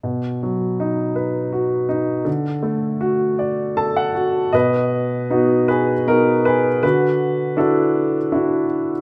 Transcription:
0.03 B2
0.43 F#3
0.80 D#4
1.16 B4
1.52 F#4
1.89 D#4
2.25 D3
2.63 A3
3.01 F#4
3.39 D5
3.77 A4 A5
3.96 F#5
4.15 F#4
4.53 B2 B4 D#5
5.30 B3 D#4 F#4
5.68 G#4 B4
6.07 B3 D#4 F#4 A#4
6.45 G#4 B4
6.83 D3 F#4 B4
7.57 D4 E4 F#4 A4
8.32 D4 E4 F#4

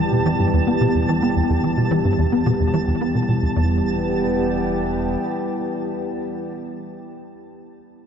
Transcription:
Already playing: E1 E3 G3 B3 G4 A5
0.12 B2
0.26 E3
0.40 G2
0.53 E2
0.67 B3
0.81 B2
0.95 E2
1.08 E3
1.22 B3
1.36 E2
1.50 E2
1.63 E3
1.77 B2
1.91 E3
2.05 G2
2.18 E2
2.32 B3
2.46 B2
2.60 E2
2.74 E3
2.87 E2
3.01 B3
3.15 B2
3.28 B2
3.42 E2
3.56 E1 E2 E3 G3 B3 G4

